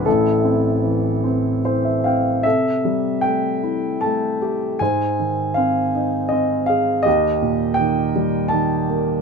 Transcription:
0.05 A1 A2 E4 A4
0.45 C4
0.84 E3
1.24 C4
1.65 E3 C5
1.85 E5
2.04 C4 F5 G5
2.43 C3 A4 E5
2.85 G3
3.21 A3 G5
3.63 E4
4.01 A3 A5
4.42 G4
4.79 G#2 C5 G#5
5.19 D#3
5.54 C4 F5
5.95 D#4
6.29 C4 D#5
6.66 G#4 F5
7.03 D#2 G4 D#5
7.42 A#2
7.74 G5
7.79 D#3
8.15 G3
8.48 D#3 A5
8.89 A#3

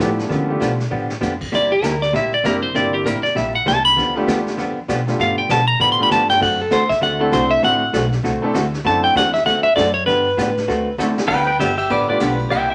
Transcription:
Already playing: E4
0.00 A2 D3 F3 A3 B3 D4 G4, snare, hi-hat pedal
0.19 snare
0.29 D3 F3 G#3 A#3 B3 C#4 D4 E4 F#4 G4, brush sweep, snare
0.48 A3 B3 D4 F4 G4
0.60 B2 D3 F3 B3 D4 G4, snare, hi-hat pedal
0.80 snare
0.91 A2 D3 F3 B3 D4 G4
1.10 snare
1.21 F2 D3 F3 B3 D4 G4, snare, hi-hat pedal
1.41 kick, crash
1.52 E2 C3 G3 A#3 E4 G4 D5, brush sweep, snare
1.72 G4
1.82 D2 C3 G3 A#3 E4 G4 A#4, snare, hi-hat pedal
2.02 D5, snare
2.13 A#1 C3 G3 A#3 E4 G4 E5, brush sweep, snare
2.34 D5
2.44 F#1 C3 G3 A#3 C4 D4 E4 G4 A#4, snare, hi-hat pedal
2.63 C5
2.74 G1 C3 G3 A#3 C4 D4 E4 G4 D5, brush sweep, snare
2.94 G4
3.04 A1 C3 G3 A#3 E4 G4 A#4, snare, hi-hat pedal
3.23 D5, muted upright bass stroke, snare
3.35 A#1 C3 G3 A#3 E4 G4 E5, brush sweep, snare
3.55 F#5
3.66 C2 C3 G3 A#3 E4 G4 A5, snare, hi-hat pedal
3.85 B5, snare
3.96 D2 D3 F3 B3 D4 G4, brush sweep, snare
4.15 A3 B3 D4 F4 G4
4.27 E2 D3 F3 B3 D4 G4, snare, hi-hat pedal
4.47 snare
4.57 F2 D3 F3 B3 D4 G4, brush sweep, snare
4.77 muted upright bass stroke
4.88 B2 D3 F3 B3 D4 G4, snare, hi-hat pedal
5.07 A3 B3 D4 F4 G4, snare
5.19 G2 D3 F3 B3 D4 G4 F5, brush sweep, snare
5.38 G5
5.49 B2 D3 F3 B3 D4 G4 A5, snare, hi-hat pedal
5.68 A#5
5.80 A2 D3 F3 B3 D4 G4 B5, brush sweep, snare
5.92 C6
5.99 A3 B3 D4 F4 G4
6.03 B5
6.10 G2 D3 F3 B3 D4 G4 A5, snare, hi-hat pedal
6.29 G5, snare
6.40 F#2 D3 A3 C4 F#4 A4 F#5, brush sweep, kick, snare, crash
6.61 A4
6.71 E2 D3 A3 C4 F#4 A4 C5, snare, hi-hat pedal
6.89 E5, kick, snare
7.01 D2 D3 A3 C4 F#4 A4 F#5, brush sweep, snare
7.19 A3 C4 D4 E4 F#4 A4
7.32 C2 D3 A3 C4 F#4 A4 C5, snare, hi-hat pedal
7.51 E5
7.62 A1 D3 A3 C4 D4 E4 F#4 A4 F#5, brush sweep, snare
7.93 B1 D3 A3 C4 F#4 A4, snare, hi-hat pedal
8.12 snare
8.23 C2 D3 A3 C4 F#4 A4, brush sweep, snare
8.42 A3 C4 D4 E4 A4, muted upright bass stroke
8.54 D2 D3 A3 C4 F#4 A4, snare, hi-hat pedal
8.74 snare
8.85 F#2 D3 A3 C4 D4 E4 F#4 A4 A5, brush sweep, snare
9.04 G5
9.15 E2 D3 A3 C4 F#4 A4 F#5, snare, hi-hat pedal
9.34 E5, snare
9.45 E2 D3 A3 C4 F#4 A4 F#5, brush sweep, snare
9.63 E5
9.75 F#2 D3 A3 C4 F#4 A4 D5, snare, hi-hat pedal
9.94 C#5
10.06 G2 D3 F3 B3 D4 G4 B4, brush sweep, snare
10.37 A2 D3 F3 B3 D4 G4, snare, hi-hat pedal
10.57 snare
10.68 D2 D3 A3 C4 F#4 A4, brush sweep, snare
10.98 E2 D3 A3 C4 D4 E4 F#4 A4, snare, hi-hat pedal
11.18 snare
11.28 D2 D3 F3 B3 D4 G4 B4 G5, kick, crash
11.47 B4 G5
11.59 G1 D3 F3 B3 D4 G4 E5, snare, hi-hat pedal, ride
11.78 G4 E5, ride
11.90 A1 D3 F3 B3 D4 G4 B4 D5, ride
12.08 A3 B3 D4 F4 G4 B4 D5
12.20 B1 D3 F3 B3 D4 G4 B4, snare, hi-hat pedal, ride
12.39 ride
12.50 C2 C3 G3 A#3 E4 G4 E5 G5, ride
12.70 E5 G5

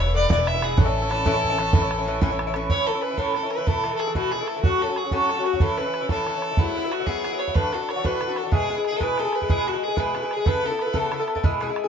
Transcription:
Already playing: E1
0.00 C#5
0.06 E3 B3 E4
0.14 A2 E3 B3 E4 D5
0.29 E1 G#2 E3 B3 E4 D5, bodhran
0.37 E3 B3 E4
0.47 E5, bodhran
0.54 E3 B3 E4
0.61 G#2 E3 B3 E4 G#4, bodhran
0.77 A1 A2 E3 C#4 E4 A4, bodhran
0.85 E3 C#4 E4
1.02 E3 C#4 E4
1.10 A2 E3 C#4 E4, bodhran
1.25 A2 E3 C#4 E4, bodhran
1.33 E3 C#4 E4
1.44 bodhran
1.50 E3 C#4 E4
1.58 A2 E3 C#4 E4, bodhran
1.73 A2 E3 C#4 E4, bodhran
1.82 E3 C#4 E4
1.91 bodhran
1.98 E3 C#4 E4
2.06 A2 E3 C#4 E4
2.21 A2 E3 C#4 E4, bodhran
2.30 E3 C#4 E4
2.39 bodhran
2.47 E3 C#4 E4
2.54 A2 E3 C#4 E4, bodhran
2.70 A2 E3 C#4 E4 C#5, bodhran
2.87 A2 E3 C#4 E4 A4
2.95 E3 C#4 E4
3.02 B4, bodhran
3.11 E3 C#4 E4
3.18 A2 E3 C#4 E4 A4, bodhran
3.35 A2 E3 C#4 E4 A4, bodhran
3.43 E3 C#4 E4
3.51 B4, bodhran
3.58 E3 C#4 E4
3.67 B2 E3 A3 E4 A4, bodhran
3.83 B2 E3 A3 E4, bodhran
3.91 E3 A3 E4
3.96 G#4 A4
4.00 bodhran
4.07 E3 A3 E4
4.15 B2 E3 A3 E4 F#4, bodhran
4.31 B2 E3 A3 E4 G#4, bodhran
4.41 E3 A3 E4
4.47 A4, bodhran
4.56 E3 A3 E4
4.63 A2 F#3 C#4 F#4, bodhran
4.82 A2 F#3 C#4 F#4 A4
4.88 F#3 C#4 F#4
4.96 G#4, bodhran
5.04 F#3 C#4 F#4
5.11 A2 F#3 C#4 F#4 A4, bodhran
5.29 A2 F#3 C#4 F#4, bodhran
5.38 F#3 C#4 F#4
5.44 F#4, bodhran
5.53 F#3 C#4 F#4, bodhran
5.60 A2 E3 C#4 E4 A4, bodhran
5.78 A2 E3 C#4 E4 B4, bodhran
5.86 E3 C#4 E4
5.94 bodhran
6.01 E3 C#4 E4
6.09 A2 E3 C#4 E4 A4, bodhran
6.27 A2 E3 C#4 E4, bodhran
6.35 E3 C#4 E4
6.42 bodhran
6.51 E3 C#4 E4
6.57 G#2 F#3 B3 E4, bodhran
6.75 G#2 F#3 B3 E4
6.84 F#3 B3 E4
6.92 F#4, bodhran
6.99 F#3 B3 E4
7.06 G#2 F#3 B3 E4 G#4, bodhran
7.24 G#2 F#3 B3 E4, bodhran
7.32 F#3 B3 E4
7.39 C#5, bodhran
7.47 F#3 B3 E4, bodhran
7.55 A2 E3 D4 F#4 B4, bodhran
7.72 A2 E3 D4 F#4 A4, bodhran
7.80 E3 D4 F#4
7.89 C#5, bodhran
7.96 E3 D4 F#4
8.04 A2 E3 D4 F#4 B4, bodhran
8.19 A2 E3 D4 F#4, bodhran
8.28 E3 D4 F#4
8.36 A4, bodhran
8.44 E3 D4 F#4
8.51 B2 G#3 E4 G#4, bodhran
8.68 B2 G#3 E4 G#4
8.77 G#3 E4 G#4
8.84 G#4, bodhran
8.92 G#3 E4 G#4
8.97 B2 G#3 E4 A4, bodhran
9.01 G#4 B4
9.17 B2 G#3 E4 G#4 A4, bodhran
9.25 G#3 E4 G#4
9.33 B4, bodhran
9.41 G#3 E4 G#4, bodhran
9.48 B2 G#3 E4 G#4, bodhran
9.66 B2 G#3 E4 F#4 G#4, bodhran
9.73 G#3 E4 G#4
9.84 G#4
9.88 G#3 E4 G#4
9.96 B2 G#3 E4 G#4 B4, bodhran
10.14 B2 G#3 E4 G#4, bodhran
10.22 G#3 E4 G#4
10.31 G#4, bodhran
10.37 G#3 E4 G#4
10.45 C#3 B3 E4 A4 B4, bodhran
10.62 C#3 B3 E4 A4
10.70 B3 E4 A4
10.79 B4, bodhran
10.86 B3 E4 A4
10.93 C#3 B3 E4 A4, bodhran
11.11 C#3 B3 E4 A4, bodhran
11.15 A4
11.19 B3 E4 A4
11.28 bodhran
11.35 B3 E4 A4, bodhran
11.43 B2 G#3 E4 G#4, bodhran
11.61 B2 G#3 E4 G#4, bodhran
11.69 G#3 E4 G#4
11.76 bodhran
11.84 G#4

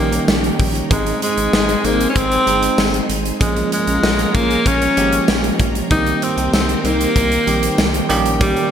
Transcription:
Already playing: A#1 D#3 G3 A#3 C#4 D#4 G4 A#4 C#5 G5
0.12 closed hi-hat
0.28 A#1, snare, tambourine
0.44 closed hi-hat
0.59 A#1, kick, open hi-hat
0.75 closed hi-hat
0.90 G#1 G#3 C4 D#4 G#4 C5 G#5, kick, closed hi-hat
1.06 closed hi-hat
1.22 G#3, closed hi-hat
1.37 G#1 C4 D#4 G#4, closed hi-hat
1.53 G#1, snare, tambourine
1.69 closed hi-hat
1.84 G#1 A#3 C4 D#4 G#4, closed hi-hat
2.00 closed hi-hat
2.09 C#4
2.16 G#1 C4, kick, closed hi-hat
2.32 closed hi-hat
2.46 G1 G#3 C4 D#4, closed hi-hat
2.63 closed hi-hat
2.78 G#1, snare, tambourine
2.94 closed hi-hat
3.09 G#1, closed hi-hat
3.25 closed hi-hat
3.40 A#1 F3 G#3 A#3 C#4 F4 G#4 A#4 C#5 A#5, kick, closed hi-hat
3.56 closed hi-hat
3.72 G#3, closed hi-hat
3.87 A#1 C#4 F4 G#4, closed hi-hat
4.03 A#1, snare, tambourine
4.19 closed hi-hat
4.35 A#1 A#3 C#4 F4 G#4, kick, closed hi-hat
4.51 closed hi-hat
4.66 A#1 C#4, kick, closed hi-hat
4.82 closed hi-hat
4.96 G#1 F3 G#3 A#3 C#4 G4, closed hi-hat
5.12 closed hi-hat
5.28 A#1, snare, tambourine
5.44 closed hi-hat
5.59 A#1, kick, closed hi-hat
5.75 closed hi-hat
5.90 C2 D#3 G3 A#3 C4 D#4 G4 A#4 C5 G5, kick, closed hi-hat
6.06 closed hi-hat
6.22 C4, closed hi-hat
6.37 C2 C4 D#4 G4, closed hi-hat
6.53 C2 C4, snare, tambourine
6.69 closed hi-hat
6.84 C2 A#3 C4 D#4 G4, closed hi-hat
7.01 closed hi-hat
7.16 C2, kick, closed hi-hat
7.32 closed hi-hat
7.46 A#1 D#3 G3 A#3 C4 G4, closed hi-hat
7.63 closed hi-hat
7.78 C2, snare, tambourine
7.94 closed hi-hat
8.09 A#1 D#3 G3 A#3 C#4 D#4 G4 A#4 C#5, closed hi-hat
8.26 closed hi-hat
8.41 G3, kick, closed hi-hat
8.56 closed hi-hat

